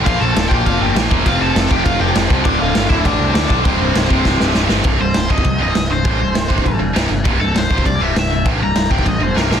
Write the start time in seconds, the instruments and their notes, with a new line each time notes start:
0.05 picked electric bass A#1, distorted electric guitar A#2 F3 A#3, overdriven electric guitar F4 F5, kick, crash
0.20 picked electric bass A#1, overdriven electric guitar A4 A5
0.36 picked electric bass D1, snare, crash
0.49 picked electric bass A#1, distorted electric guitar A#2 F3 A#3, overdriven electric guitar G4 G5, kick
0.66 picked electric bass F1, overdriven electric guitar F4 F5, kick, crash
0.81 picked electric bass G1, overdriven electric guitar G4 G5
0.95 picked electric bass A#1, distorted electric guitar A#2 F3 A#3, snare, crash
1.10 picked electric bass E1, distorted electric guitar A#2 F3 A#3, kick
1.24 picked electric bass F1, distorted electric guitar F2 C3 F3, kick, crash
1.28 overdriven electric guitar F4 F5
1.40 picked electric bass F1, overdriven electric guitar A4 A5
1.55 picked electric bass F1, snare, crash
1.69 picked electric bass F1, distorted electric guitar F2 C3 F3, overdriven electric guitar G4 G5, kick
1.84 picked electric bass F1, overdriven electric guitar F4 F5, kick, crash
2.00 picked electric bass F1, overdriven electric guitar G4 G5
2.14 picked electric bass F1, distorted electric guitar F2 C3 F3, snare, crash
2.30 picked electric bass C2, distorted electric guitar F2 C3 F3, kick
2.43 picked electric bass D1, distorted electric guitar D2 A2 D3, overdriven electric guitar D4 D5, kick, crash
2.59 picked electric bass D1, overdriven electric guitar F4 F5
2.75 picked electric bass G1, snare, crash
2.88 picked electric bass D1, distorted electric guitar D2 A2 D3, overdriven electric guitar E4 E5, kick
3.04 picked electric bass A1, overdriven electric guitar D4 D5, kick, crash
3.19 picked electric bass C2
3.34 picked electric bass D2, distorted electric guitar D2 A2 D3, overdriven electric guitar D4 D5, snare, crash
3.49 picked electric bass B1, distorted electric guitar D2 A2 D3, kick
3.64 picked electric bass C1, distorted electric guitar C2 G2 C3, overdriven electric guitar C4 C5, kick, crash
3.80 picked electric bass C1
3.95 picked electric bass C1, snare, crash
4.09 picked electric bass C1, distorted electric guitar C2 G2 C3, kick
4.25 picked electric bass C1, kick, snare
4.40 picked electric bass C1, snare
4.54 picked electric bass C1, distorted electric guitar C2 G2 C3, snare
4.69 picked electric bass G1, distorted electric guitar C2 G2 C3, snare
4.84 picked electric bass C1, distorted electric guitar C2 G2 C3, kick, crash
4.99 picked electric bass C1, distorted electric guitar C2 G2, overdriven electric guitar C5
5.14 picked electric bass C1, distorted electric guitar C2 G2, snare, crash
5.29 picked electric bass C1, distorted electric guitar C2 G2 C3, overdriven electric guitar D#5, kick
5.38 kick
5.44 distorted electric guitar C2 G2, picked electric bass C2, kick, crash
5.58 picked electric bass C1, distorted electric guitar C2 G2 C3, overdriven electric guitar D#5
5.74 picked electric bass C1, distorted electric guitar C2 G2, snare, crash
5.90 distorted electric guitar C2 G2, overdriven electric guitar C5
6.05 picked electric bass A1, distorted electric guitar C2 G2 C3, kick, crash
6.19 picked electric bass C1, distorted electric guitar C2 G2
6.35 picked electric bass C1, distorted electric guitar C2 G2, snare, crash
6.49 picked electric bass C1, distorted electric guitar C2 G2 C3, kick
6.58 kick
6.64 picked electric bass A1, distorted electric guitar C2 G2, kick, crash
6.79 picked electric bass E1, distorted electric guitar C2 G2
6.93 picked electric bass C1, distorted electric guitar C2 G2 C3, snare, crash
7.10 picked electric bass G1, distorted electric guitar C2 G2
7.24 picked electric bass C1, distorted electric guitar C2 G2 C3, kick, crash
7.39 picked electric bass C1, distorted electric guitar C2 G2, overdriven electric guitar A4
7.55 picked electric bass C1, distorted electric guitar C2 G2, overdriven electric guitar C5, snare, crash
7.70 picked electric bass C1, distorted electric guitar C2 G2 C3, kick
7.78 kick
7.85 distorted electric guitar C2 G2, picked electric bass C2, overdriven electric guitar D5, kick, crash
7.99 picked electric bass C1, distorted electric guitar C2 G2 C3, overdriven electric guitar E5
8.15 picked electric bass C1, distorted electric guitar C2 G2, snare, crash
8.19 overdriven electric guitar E5
8.30 distorted electric guitar C2 G2
8.45 picked electric bass A1, distorted electric guitar C2 G2 C3, kick, crash
8.60 picked electric bass C1, distorted electric guitar C2 G2, overdriven electric guitar A#5
8.75 picked electric bass C1, distorted electric guitar C2 G2, snare, crash
8.90 picked electric bass C1, distorted electric guitar C2 G2 C3, overdriven electric guitar G5, kick
8.99 kick
9.04 picked electric bass A1, distorted electric guitar C2 G2, overdriven electric guitar D#5, kick, crash
9.19 picked electric bass E1, distorted electric guitar C2 G2, overdriven electric guitar C5
9.34 picked electric bass C1, distorted electric guitar C2 G2 C3, overdriven electric guitar A#4, snare
9.49 picked electric bass A#1, distorted electric guitar A#2 F3 A#3, snare
9.54 overdriven electric guitar G4